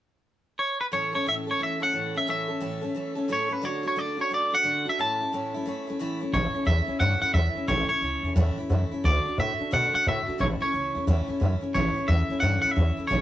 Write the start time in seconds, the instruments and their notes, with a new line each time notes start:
0.59 clean electric guitar C#5
0.81 clean electric guitar B4
0.92 steel-string acoustic guitar A2 E3 A3 C#4 A4, clean electric guitar C#5
1.13 steel-string acoustic guitar A3 C#4 A4, clean electric guitar C#5
1.26 steel-string acoustic guitar A2 E3 A3 C#4 A4, clean electric guitar E5
1.47 steel-string acoustic guitar A3 C#4 A4
1.51 clean electric guitar C#5
1.59 steel-string acoustic guitar E3 A3 C#4 A4
1.63 clean electric guitar E5
1.80 steel-string acoustic guitar A3 C#4 A4, clean electric guitar F#5
1.93 steel-string acoustic guitar A2 E3 A3 C#4 A4
2.14 steel-string acoustic guitar A3 C#4 A4, clean electric guitar E5
2.27 steel-string acoustic guitar A2 E3 A3 C#4 A4, clean electric guitar E5
2.48 steel-string acoustic guitar A3 C#4 A4
2.60 steel-string acoustic guitar A2 E3 A3 C#4 A4
2.81 steel-string acoustic guitar A3 C#4 A4
2.95 steel-string acoustic guitar E3 A3 C#4 A4
3.15 steel-string acoustic guitar A3 C#4 A4
3.28 steel-string acoustic guitar A2 E3 A3 C#4 A4
3.33 clean electric guitar C#5
3.49 steel-string acoustic guitar A3 C#4 A4, clean electric guitar B4
3.62 steel-string acoustic guitar D3 A3 D4 F#4, clean electric guitar C#5
3.83 steel-string acoustic guitar A3 D4 F#4
3.88 clean electric guitar C#5
3.96 steel-string acoustic guitar D3 A3 D4 F#4, clean electric guitar D5
4.17 steel-string acoustic guitar A3 D4 F#4
4.21 clean electric guitar C#5
4.30 steel-string acoustic guitar D3 A3 D4 F#4
4.34 clean electric guitar D5
4.50 steel-string acoustic guitar A3 D4 F#4
4.55 clean electric guitar F#5
4.63 steel-string acoustic guitar D3 A3 D4 F#4
4.85 steel-string acoustic guitar A3 D4 F#4
4.89 clean electric guitar E5
4.99 steel-string acoustic guitar A2 E3 A3 C#4 E4, clean electric guitar A5
5.20 steel-string acoustic guitar A3 C#4 E4
5.32 steel-string acoustic guitar A2 E3 A3 C#4 E4
5.54 steel-string acoustic guitar A3 C#4 E4
5.66 steel-string acoustic guitar E3 A3 C#4 E4
5.87 steel-string acoustic guitar A3 C#4 E4
5.99 steel-string acoustic guitar A2 E3 A3 C#4 E4
6.20 steel-string acoustic guitar A3 C#4 E4
6.33 upright bass A1, steel-string acoustic guitar A2 E3 A3 C#4 E4, clean electric guitar C#5
6.53 steel-string acoustic guitar A3 C#4 E4, muted upright bass stroke
6.65 upright bass E2, steel-string acoustic guitar E3 A3 C#4 E4, clean electric guitar E5
6.87 steel-string acoustic guitar A3 C#4 E4, muted upright bass stroke
7.00 upright bass G2, steel-string acoustic guitar A2 E3 A3 C#4 E4, clean electric guitar F#5
7.21 steel-string acoustic guitar A3 C#4 E4, clean electric guitar F#5, muted upright bass stroke
7.34 upright bass E2, steel-string acoustic guitar E3 A3 C#4 E4, clean electric guitar E5
7.55 steel-string acoustic guitar A3 C#4 E4, muted upright bass stroke
7.68 upright bass A1, steel-string acoustic guitar A2 E3 A3 C#4 E4, clean electric guitar C#5
7.89 steel-string acoustic guitar A3 C#4 E4, clean electric guitar C#5, muted upright bass stroke
8.01 upright bass C#2, steel-string acoustic guitar E3 A3 C#4 E4
8.23 upright bass E2, steel-string acoustic guitar A3 C#4 E4
8.36 upright bass E2, steel-string acoustic guitar A2 E3 A3 C#4 E4
8.58 steel-string acoustic guitar A3 C#4 E4, muted upright bass stroke
8.69 upright bass F#2, steel-string acoustic guitar E3 A3 C#4 E4
8.91 steel-string acoustic guitar A3 C#4 E4, muted upright bass stroke
9.04 upright bass D2, steel-string acoustic guitar D3 A3 D4 F#4, clean electric guitar D5
9.25 steel-string acoustic guitar A3 D4 F#4, muted upright bass stroke
9.38 upright bass A2, steel-string acoustic guitar D3 A3 D4 F#4, clean electric guitar E5
9.59 steel-string acoustic guitar A3 D4 F#4, muted upright bass stroke
9.71 upright bass B2, steel-string acoustic guitar D3 A3 D4 F#4, clean electric guitar F#5
9.92 steel-string acoustic guitar A3 D4 F#4, clean electric guitar F#5, muted upright bass stroke
10.04 upright bass A2, steel-string acoustic guitar D3 A3 D4 F#4, clean electric guitar E5
10.27 steel-string acoustic guitar A3 D4 F#4, muted upright bass stroke
10.38 upright bass A1, steel-string acoustic guitar A2 E3 A3 C#4 E4, clean electric guitar C#5
10.60 steel-string acoustic guitar A3 C#4 E4, clean electric guitar C#5, muted upright bass stroke
10.73 upright bass C#2, steel-string acoustic guitar E3 A3 C#4 E4
10.95 upright bass E2, steel-string acoustic guitar A3 C#4 E4
11.07 upright bass E2, steel-string acoustic guitar A2 E3 A3 C#4 E4
11.28 steel-string acoustic guitar A3 C#4 E4, muted upright bass stroke
11.40 upright bass F#2, steel-string acoustic guitar E3 A3 C#4 E4
11.61 steel-string acoustic guitar A3 C#4 E4, muted upright bass stroke
11.74 upright bass A1, steel-string acoustic guitar A2 E3 A3 C#4 E4, clean electric guitar C#5
11.96 steel-string acoustic guitar A3 C#4 E4, muted upright bass stroke
12.08 upright bass E2, steel-string acoustic guitar E3 A3 C#4 E4, clean electric guitar E5
12.29 steel-string acoustic guitar A3 C#4 E4, muted upright bass stroke
12.40 upright bass G2, steel-string acoustic guitar A2 E3 A3 C#4 E4, clean electric guitar F#5
12.62 steel-string acoustic guitar C#4 E4, clean electric guitar F#5, muted upright bass stroke
12.66 steel-string acoustic guitar A3
12.71 clean electric guitar E5
12.75 upright bass E2, steel-string acoustic guitar E3 A3 C#4 E4
12.97 steel-string acoustic guitar A3 C#4 E4, muted upright bass stroke
13.07 upright bass A1, steel-string acoustic guitar A2 E3 A3 C#4 E4, clean electric guitar C#5